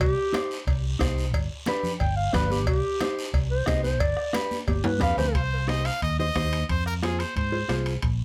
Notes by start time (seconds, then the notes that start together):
0.00 C2 G4, bombo low, cowbell, high conga, long guiro
0.33 D#4 G4 C5, bombo rim, cowbell, high conga, short guiro
0.51 short guiro
0.67 C2, bombo low, cowbell, high conga, long guiro
0.99 C2 D#4 G4 C5, bombo low, bombo rim, cowbell, high conga, short guiro
1.18 short guiro
1.33 G1, bombo low, cowbell, high conga, long guiro
1.66 D4 G4 B4, bombo rim, cowbell, high conga, short guiro
1.83 low conga, short guiro
2.00 G1 G5, bombo low, cowbell, high conga, long guiro
2.17 F5
2.33 G1 D4 G4 B4, bombo low, bombo rim, cowbell, high conga, low conga, short guiro
2.50 G4, high conga, short guiro
2.67 C2 G4, bombo low, cowbell, long guiro
3.00 D#4 G4 C5, bombo rim, cowbell, high conga, short guiro
3.19 short guiro
3.34 C2, bombo low, cowbell, high conga, long guiro
3.51 C5
3.66 C2 D#4 G4 C5 D#5, bombo low, bombo rim, cowbell, high conga, low timbale, short guiro
3.83 C5, high conga, short guiro
4.00 G1 D5, bombo low, cowbell, long guiro
4.17 bombo rim
4.33 D4 G4 B4, bombo rim, cowbell, high conga, short guiro
4.51 high conga, short guiro
4.67 G1 G4, bombo low, cowbell, high conga, long guiro
4.84 G2 B4, high conga, high timbale
5.00 F2 D4 G4 B4 F5, bombo low, bombo rim, cowbell, low timbale, short guiro
5.17 D2 C5, low conga, low timbale, short guiro
5.35 C2 C5, bombo low, high timbale
5.68 D#4 G4 C5 D#5, bombo rim, high conga, high timbale, short guiro
5.85 F5, high timbale, short guiro
6.02 D#2 D#5, bombo low, high timbale, long guiro
6.19 D#4 G4 C5 D#5
6.36 D#2 D#4 G4 C5, bombo low, bombo rim, high conga, high timbale, short guiro
6.53 high timbale, short guiro
6.69 F2 C5, bombo low, high timbale, long guiro
6.86 A#4, bombo rim
7.03 F4 G#4 C5, bombo rim, high conga, high timbale, short guiro
7.20 C5, high timbale, short guiro
7.36 G#2 C5, bombo low, high timbale, long guiro
7.52 F4 G#4 C5
7.68 C2 F4 G#4 C5, bombo rim, high conga, high timbale, short guiro
7.86 high timbale, short guiro
8.02 A#1, bombo low, high timbale, long guiro